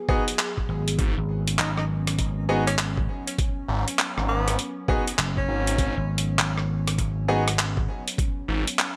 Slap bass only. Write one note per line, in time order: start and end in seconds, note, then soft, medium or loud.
0.69 0.97 G#1 loud
1.18 1.57 G#1 loud
1.59 2.17 G#1 loud
2.19 3.07 G#1 loud
5.18 5.47 F#1 medium
5.97 6.37 G#1 loud
6.38 6.97 G#1 medium
6.98 7.87 G#1 loud